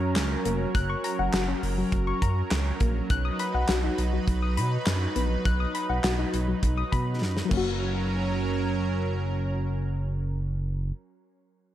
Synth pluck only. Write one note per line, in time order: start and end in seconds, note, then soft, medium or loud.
0.46 0.57 A#3 medium
0.75 0.86 F#6 loud
0.90 1.01 C#6 medium
1.04 1.16 A#5 medium
1.19 1.30 F#5 medium
1.34 1.45 F#4 medium
1.48 1.60 C#4 medium
1.78 1.89 F#3 medium
2.07 2.19 C#6 medium
2.22 2.33 A#5 loud
2.81 2.92 A#3 medium
3.10 3.22 F#6 loud
3.25 3.36 D#6 medium
3.40 3.51 B5 medium
3.54 3.66 F#5 medium
3.69 3.81 F#4 medium
3.84 3.95 D#4 medium
4.13 4.25 F#3 medium
4.42 4.54 D#6 medium
4.57 4.69 B5 loud
5.16 5.27 B3 medium
5.45 5.57 F#6 loud
5.60 5.72 D#6 medium
5.75 5.86 B5 loud
5.89 6.01 F#5 medium
6.04 6.15 F#4 medium
6.19 6.30 D#4 medium
6.48 6.60 F#3 medium
6.77 6.89 D#6 medium
6.92 7.04 B5 loud
7.45 11.11 F#3 medium
7.45 11.15 A#3 medium
7.53 11.19 C#4 medium
7.57 11.23 F#4 loud